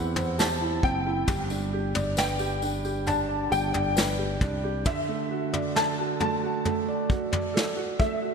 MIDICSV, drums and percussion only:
0, 0, Header, 1, 2, 480
1, 0, Start_track
1, 0, Key_signature, 1, "major"
1, 0, Tempo, 895522
1, 686, Time_signature, 4, 2, 24, 8
1, 4472, End_track
2, 0, Start_track
2, 0, Title_t, "Drums"
2, 87, Note_on_c, 9, 43, 70
2, 87, Note_on_c, 9, 54, 31
2, 140, Note_off_c, 9, 43, 0
2, 141, Note_off_c, 9, 54, 0
2, 209, Note_on_c, 9, 54, 77
2, 214, Note_on_c, 9, 38, 103
2, 263, Note_off_c, 9, 54, 0
2, 268, Note_off_c, 9, 38, 0
2, 446, Note_on_c, 9, 36, 84
2, 500, Note_off_c, 9, 36, 0
2, 684, Note_on_c, 9, 43, 98
2, 685, Note_on_c, 9, 54, 43
2, 686, Note_on_c, 9, 36, 103
2, 738, Note_off_c, 9, 43, 0
2, 739, Note_off_c, 9, 36, 0
2, 739, Note_off_c, 9, 54, 0
2, 805, Note_on_c, 9, 54, 44
2, 858, Note_off_c, 9, 54, 0
2, 1045, Note_on_c, 9, 43, 70
2, 1045, Note_on_c, 9, 54, 33
2, 1098, Note_off_c, 9, 54, 0
2, 1099, Note_off_c, 9, 43, 0
2, 1163, Note_on_c, 9, 54, 73
2, 1170, Note_on_c, 9, 38, 106
2, 1217, Note_off_c, 9, 54, 0
2, 1224, Note_off_c, 9, 38, 0
2, 1282, Note_on_c, 9, 54, 46
2, 1335, Note_off_c, 9, 54, 0
2, 1405, Note_on_c, 9, 54, 52
2, 1459, Note_off_c, 9, 54, 0
2, 1526, Note_on_c, 9, 54, 33
2, 1580, Note_off_c, 9, 54, 0
2, 1644, Note_on_c, 9, 54, 44
2, 1648, Note_on_c, 9, 43, 59
2, 1697, Note_off_c, 9, 54, 0
2, 1701, Note_off_c, 9, 43, 0
2, 1888, Note_on_c, 9, 54, 48
2, 1941, Note_off_c, 9, 54, 0
2, 2005, Note_on_c, 9, 43, 63
2, 2059, Note_off_c, 9, 43, 0
2, 2127, Note_on_c, 9, 54, 77
2, 2133, Note_on_c, 9, 38, 108
2, 2180, Note_off_c, 9, 54, 0
2, 2187, Note_off_c, 9, 38, 0
2, 2365, Note_on_c, 9, 36, 84
2, 2365, Note_on_c, 9, 43, 64
2, 2418, Note_off_c, 9, 43, 0
2, 2419, Note_off_c, 9, 36, 0
2, 2603, Note_on_c, 9, 43, 102
2, 2604, Note_on_c, 9, 36, 108
2, 2657, Note_off_c, 9, 43, 0
2, 2658, Note_off_c, 9, 36, 0
2, 2967, Note_on_c, 9, 43, 69
2, 3021, Note_off_c, 9, 43, 0
2, 3089, Note_on_c, 9, 38, 112
2, 3142, Note_off_c, 9, 38, 0
2, 3325, Note_on_c, 9, 43, 60
2, 3379, Note_off_c, 9, 43, 0
2, 3566, Note_on_c, 9, 43, 55
2, 3620, Note_off_c, 9, 43, 0
2, 3804, Note_on_c, 9, 36, 86
2, 3858, Note_off_c, 9, 36, 0
2, 3927, Note_on_c, 9, 43, 69
2, 3980, Note_off_c, 9, 43, 0
2, 4057, Note_on_c, 9, 38, 110
2, 4111, Note_off_c, 9, 38, 0
2, 4286, Note_on_c, 9, 36, 93
2, 4340, Note_off_c, 9, 36, 0
2, 4472, End_track
0, 0, End_of_file